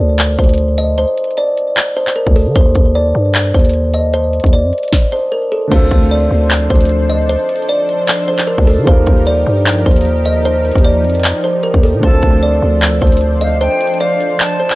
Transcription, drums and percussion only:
0.19 clap loud
0.19 closed hi-hat medium
0.39 kick loud
0.39 closed hi-hat medium
0.44 closed hi-hat medium
0.49 closed hi-hat medium
0.54 closed hi-hat medium
0.58 closed hi-hat medium
0.78 closed hi-hat medium
0.98 closed hi-hat medium
1.18 closed hi-hat medium
1.24 closed hi-hat medium
1.31 closed hi-hat soft
1.37 closed hi-hat medium
1.57 closed hi-hat medium
1.77 clap loud
1.77 closed hi-hat medium
2.07 clap medium
2.16 closed hi-hat medium
2.27 kick loud
2.36 open hi-hat medium
2.56 kick loud
2.56 closed hi-hat medium
2.75 kick loud
2.75 closed hi-hat medium
3.35 clap loud
3.35 closed hi-hat medium
3.54 kick loud
3.54 closed hi-hat medium
3.60 closed hi-hat medium
3.65 closed hi-hat medium
3.69 closed hi-hat medium
3.74 closed hi-hat medium
3.94 closed hi-hat medium
4.14 closed hi-hat medium
4.33 closed hi-hat soft
4.40 kick loud
4.40 closed hi-hat medium
4.46 closed hi-hat medium
4.53 closed hi-hat medium
4.73 closed hi-hat soft
4.78 closed hi-hat medium
4.83 closed hi-hat medium
4.88 closed hi-hat medium
4.93 kick loud
4.93 snare medium
5.72 kick loud
5.72 closed hi-hat medium
5.72 crash loud
5.91 kick loud
5.91 closed hi-hat medium
6.51 clap loud
6.51 closed hi-hat medium
6.70 kick loud
6.70 closed hi-hat medium
6.76 closed hi-hat medium
6.81 closed hi-hat medium
6.85 closed hi-hat medium
6.89 closed hi-hat medium
7.10 closed hi-hat medium
7.29 closed hi-hat medium
7.49 closed hi-hat medium
7.56 closed hi-hat medium
7.62 closed hi-hat soft
7.69 closed hi-hat medium
7.89 closed hi-hat medium
8.08 clap loud
8.08 closed hi-hat medium
8.39 clap medium
8.47 closed hi-hat medium
8.58 kick loud
8.67 open hi-hat medium
8.87 kick loud
8.87 closed hi-hat medium
9.07 kick loud
9.07 closed hi-hat medium
9.66 clap loud
9.66 closed hi-hat medium
9.86 kick loud
9.86 closed hi-hat medium
9.91 closed hi-hat medium
9.96 closed hi-hat medium
10.01 closed hi-hat medium
10.05 closed hi-hat medium
10.25 closed hi-hat medium
10.45 closed hi-hat medium
10.65 closed hi-hat soft
10.72 kick loud
10.72 closed hi-hat medium
10.78 closed hi-hat medium
10.85 closed hi-hat medium
11.04 closed hi-hat soft
11.10 closed hi-hat medium
11.15 closed hi-hat medium
11.20 closed hi-hat medium
11.24 clap loud
11.24 closed hi-hat medium
11.63 closed hi-hat medium
11.74 kick loud
11.83 open hi-hat medium
12.03 kick loud
12.03 closed hi-hat medium
12.22 kick loud
12.22 closed hi-hat medium
12.82 clap loud
12.82 closed hi-hat medium
13.02 kick loud
13.02 closed hi-hat medium
13.07 closed hi-hat medium
13.12 closed hi-hat medium
13.17 closed hi-hat medium
13.21 closed hi-hat medium
13.41 closed hi-hat medium
13.61 closed hi-hat medium
13.81 closed hi-hat medium
13.87 closed hi-hat medium
13.94 closed hi-hat soft
14.00 closed hi-hat medium
14.21 closed hi-hat medium
14.40 clap loud
14.40 closed hi-hat medium
14.70 clap medium

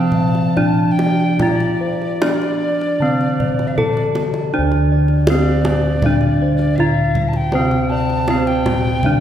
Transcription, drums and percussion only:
0.12 kendang low medium
0.35 kendang slap soft
0.57 kendang low medium
0.99 kendang high medium
1.39 kendang high soft
1.39 kendang low medium
1.60 kendang slap soft
2.02 kendang slap soft
2.22 kendang high medium
2.42 kendang slap soft
2.81 kendang slap soft
3.21 kendang slap soft
3.40 kendang low medium
3.59 kendang slap soft
3.78 kendang low medium
3.97 kendang slap soft
4.15 kendang high medium
4.34 kendang slap soft
4.71 kendang slap soft
5.08 kendang slap soft
5.27 kendang high medium
5.65 kendang high medium
5.65 kendang low medium
6.02 kendang low medium
6.21 kendang slap soft
6.59 kendang slap soft
6.78 kendang low medium
7.15 kendang low medium
7.33 kendang slap soft
7.52 kendang high medium
7.71 kendang slap soft
8.10 kendang slap soft
8.28 kendang high medium
8.47 kendang slap soft
8.66 kendang high medium
8.66 kendang low medium
9.03 kendang low medium

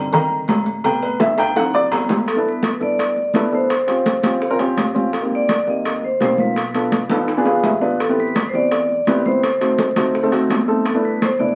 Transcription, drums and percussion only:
0.13 cowbell loud
0.13 high conga soft
0.13 low conga medium
0.13 low agogo loud
0.31 high conga soft
0.48 cowbell medium
0.48 high conga medium
0.48 low timbale medium
0.48 low agogo medium
0.66 cowbell medium
0.66 high conga soft
0.84 cowbell loud
0.84 high conga soft
0.84 low agogo loud
1.02 high conga soft
1.02 low agogo medium
1.20 cowbell medium
1.20 high bongo loud
1.20 high conga medium
1.20 high timbale medium
1.38 cowbell medium
1.38 high bongo medium
1.38 high conga soft
1.38 high timbale medium
1.38 low agogo loud
1.56 cowbell loud
1.56 high bongo medium
1.56 high conga soft
1.56 high timbale medium
1.56 low agogo medium
1.73 high conga soft
1.73 low timbale medium
1.92 cowbell medium
1.92 high conga soft
1.92 low timbale loud
1.92 low agogo loud
2.09 low bongo loud
2.09 high conga medium
2.09 low timbale medium
2.28 high bongo medium
2.28 high conga soft
2.28 high timbale medium
2.45 high bongo soft
2.45 high conga soft
2.63 high bongo medium
2.63 high conga medium
2.63 high timbale medium
2.63 low timbale medium
2.81 high bongo soft
2.81 high conga soft
2.98 high bongo medium
2.98 high conga soft
2.98 high timbale medium
3.16 high bongo soft
3.16 high conga soft
3.34 high bongo soft
3.34 low bongo medium
3.34 high conga medium
3.34 high timbale medium
3.34 low timbale medium
3.70 high bongo medium
3.70 high conga soft
3.70 high timbale medium
3.88 high bongo soft
3.88 high conga soft
3.88 high timbale medium
4.06 high bongo medium
4.06 high conga medium
4.06 high timbale medium
4.06 low timbale medium
4.23 high bongo soft
4.23 high conga medium
4.23 high timbale medium
4.42 high bongo medium
4.42 high conga soft
4.59 high bongo soft
4.59 high conga soft
4.59 high timbale medium
4.77 high bongo soft
4.77 low bongo medium
4.77 high conga medium
4.77 high timbale medium
4.77 low timbale medium
4.96 high conga medium
5.13 high bongo medium
5.13 high conga soft
5.13 high timbale medium
5.31 high bongo soft
5.31 high conga soft
5.49 high bongo soft
5.49 high conga medium
5.49 high timbale medium
5.49 low timbale medium
5.67 high bongo soft
5.67 high conga soft
5.85 high bongo medium
5.85 high conga soft
5.85 high timbale medium
6.03 high bongo soft
6.03 high conga soft
6.20 high bongo soft
6.20 low bongo medium
6.20 high conga medium
6.20 high timbale medium
6.20 low timbale medium
6.38 high conga medium
6.56 high bongo medium
6.56 high conga soft
6.56 high timbale medium
6.74 high bongo soft
6.74 high conga soft
6.74 high timbale medium
6.92 high bongo medium
6.92 high conga medium
6.92 high timbale medium
6.92 low timbale medium
7.09 high bongo soft
7.09 high conga medium
7.09 high timbale medium
7.28 high bongo medium
7.28 high conga soft
7.28 high timbale medium
7.45 high bongo soft
7.45 high conga soft
7.45 low timbale medium
7.63 high bongo soft
7.63 low bongo medium
7.63 high conga medium
7.63 low timbale medium
7.81 low timbale medium
8.00 high bongo medium
8.00 high conga soft
8.00 high timbale medium
8.18 high bongo soft
8.18 high conga soft
8.35 high bongo medium
8.35 high conga medium
8.35 high timbale medium
8.35 low timbale medium
8.53 high bongo soft
8.53 high conga soft
8.71 high bongo medium
8.71 high conga soft
8.71 high timbale medium
8.89 high bongo soft
8.89 high conga soft
9.07 high bongo soft
9.07 low bongo medium
9.07 high conga medium
9.07 high timbale medium
9.07 low timbale medium
9.26 high conga medium
9.43 high bongo medium
9.43 high conga soft
9.43 high timbale medium
9.61 high bongo soft
9.61 high conga soft
9.61 high timbale medium
9.78 high bongo medium
9.78 high conga medium
9.78 high timbale medium
9.78 low timbale medium
9.96 high conga medium
9.96 high timbale medium
10.14 high bongo medium
10.14 high conga soft
10.32 high bongo soft
10.32 high conga soft
10.32 high timbale medium
10.50 high bongo soft
10.50 low bongo medium
10.50 high conga medium
10.50 high timbale medium
10.50 low timbale medium
10.85 high bongo medium
10.85 high conga soft
10.85 high timbale medium
11.04 high bongo soft
11.04 high conga soft
11.22 high bongo medium
11.22 high conga medium
11.22 high timbale medium
11.22 low timbale medium
11.40 high bongo soft
11.40 high conga soft

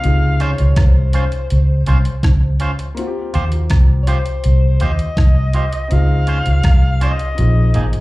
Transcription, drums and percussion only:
0.04 closed hi-hat medium
0.40 closed hi-hat medium
0.58 closed hi-hat soft
0.76 kick loud
0.76 cross-stick loud
0.76 closed hi-hat medium
1.13 closed hi-hat medium
1.32 closed hi-hat soft
1.50 closed hi-hat medium
1.86 closed hi-hat medium
2.05 closed hi-hat medium
2.23 kick loud
2.23 cross-stick loud
2.23 closed hi-hat medium
2.60 closed hi-hat medium
2.79 closed hi-hat medium
2.97 closed hi-hat loud
3.34 closed hi-hat medium
3.52 closed hi-hat medium
3.70 kick loud
3.70 cross-stick loud
3.70 closed hi-hat medium
4.07 closed hi-hat medium
4.26 closed hi-hat soft
4.44 closed hi-hat medium
4.80 closed hi-hat medium
4.99 closed hi-hat medium
5.17 kick loud
5.17 cross-stick loud
5.17 closed hi-hat medium
5.53 closed hi-hat medium
5.73 closed hi-hat medium
5.91 closed hi-hat medium
6.27 closed hi-hat medium
6.46 closed hi-hat medium
6.63 kick loud
6.63 cross-stick loud
6.63 closed hi-hat medium
7.01 closed hi-hat medium
7.19 closed hi-hat soft
7.38 closed hi-hat medium
7.74 closed hi-hat medium
7.93 closed hi-hat medium

